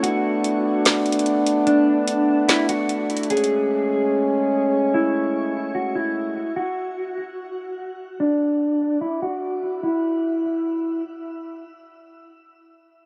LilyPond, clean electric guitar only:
\new Staff \with { instrumentName = "Clean electric guitar" } { \time 4/4 \key a \major \tempo 4 = 147 fis'1 | d'2 e'8 fis'4. | gis'1 | e'2 fis'8 e'4. |
fis'1 | d'2 e'8 fis'4. | e'2. r4 | r1 | }